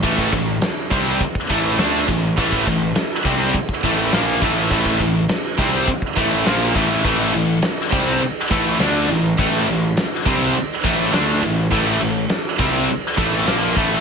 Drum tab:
CC |----------------|x---------------|----------------|x---------------|
RD |x-x-x-x-x-x-x-x-|--x-x-x-x-x-x-x-|x-x-x-x-x-x-x-x-|--x-x-x-x-x-x-x-|
SD |----o-------o---|----o-------o---|----o-------o---|----o-------o---|
BD |ooo---o-ooo---o-|ooo---o-ooo---o-|ooo---o-ooo---o-|o-----o---o-----|

CC |----------------|x---------------|
RD |x-x-x-x-x-x-x-x-|--x-x-x-x-x-x-x-|
SD |----o-------o---|----o-------o---|
BD |o-----o---o-----|o-----o---o---o-|